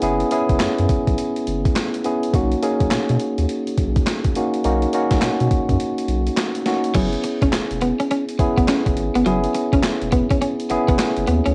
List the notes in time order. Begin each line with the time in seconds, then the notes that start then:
Already playing: B3 C#4 E4 G#4
0.02 F#1 B3 C#4 E4 G#4, closed hi-hat
0.20 closed hi-hat
0.31 B3 C#4 E4 G#4, closed hi-hat
0.49 F#1, kick, closed hi-hat
0.60 F#2, snare, clap, closed hi-hat
0.78 F#2, closed hi-hat
0.89 kick, closed hi-hat
1.07 B1, kick, closed hi-hat
1.18 closed hi-hat
1.36 closed hi-hat
1.47 F#1, closed hi-hat
1.65 kick, closed hi-hat
1.76 snare, clap, closed hi-hat
1.94 closed hi-hat
2.04 B3 C#4 E4 G#4, closed hi-hat
2.23 closed hi-hat
2.34 B1 A#3 C#4 D#4 F#4, kick, closed hi-hat
2.52 closed hi-hat
2.62 A#3 C#4 D#4 G#4, closed hi-hat
2.80 B1, kick, closed hi-hat
2.91 B2, snare, clap, closed hi-hat
3.09 B2, closed hi-hat
3.20 closed hi-hat
3.38 D#2, closed hi-hat
3.49 closed hi-hat
3.67 closed hi-hat
3.77 B1, kick, closed hi-hat
3.96 kick, closed hi-hat
4.06 snare, clap, closed hi-hat
4.24 kick, closed hi-hat
4.35 A#3 C#4 D#4 F#4, closed hi-hat
4.54 closed hi-hat
4.64 B1 A#3 C#4 D#4 F#4, closed hi-hat
4.82 closed hi-hat
4.93 A#3 C#4 D#4 F#4, closed hi-hat
5.11 B1, kick, snare, closed hi-hat
5.22 B2, snare, clap, closed hi-hat
5.40 B2, closed hi-hat
5.51 kick, closed hi-hat
5.69 F#2, kick, closed hi-hat
5.80 closed hi-hat
5.98 closed hi-hat
6.08 B1, closed hi-hat
6.27 closed hi-hat
6.37 snare, clap, closed hi-hat
6.55 closed hi-hat
6.66 A#3 C#4 D#4 F#4, snare, closed hi-hat
6.84 closed hi-hat
6.94 F#1 F#3 B3 C#4 E4 G#4, kick, closed hi-hat, crash
7.13 closed hi-hat
7.24 muted clean electric guitar stroke, closed hi-hat
7.42 F#1 C#4, kick, closed hi-hat
7.53 E1, muted clean electric guitar stroke, snare, clap, closed hi-hat
7.71 E1, closed hi-hat
7.81 B3, closed hi-hat
8.00 C#4, closed hi-hat
8.11 C#4, closed hi-hat
8.29 closed hi-hat
8.39 F#1 B3 C#4 E4 G#4, muted clean electric guitar stroke, kick, closed hi-hat
8.58 F#1 B3, kick, closed hi-hat
8.68 C#4, snare, clap, closed hi-hat
8.86 F#1, muted clean electric guitar stroke, kick, closed hi-hat
8.97 G#1, closed hi-hat
9.15 G1 B3, closed hi-hat
9.26 F#1 F#3 B3 C#4 E4 G#4, closed hi-hat
9.44 closed hi-hat
9.55 muted clean electric guitar stroke, closed hi-hat
9.73 F#1 C#4, kick, closed hi-hat
9.83 E1, muted clean electric guitar stroke, snare, clap, closed hi-hat
10.02 E1, closed hi-hat
10.12 B3, kick, closed hi-hat
10.30 C#4, kick, closed hi-hat
10.42 C#4, closed hi-hat
10.60 closed hi-hat
10.70 F#1 B3 C#4 E4 G#4, muted clean electric guitar stroke, closed hi-hat
10.88 F#1 B3, kick, closed hi-hat
10.99 muted clean electric guitar stroke, snare, clap, closed hi-hat
11.17 F#1, closed hi-hat
11.27 D#2 B3, closed hi-hat
11.46 D2 C#4, closed hi-hat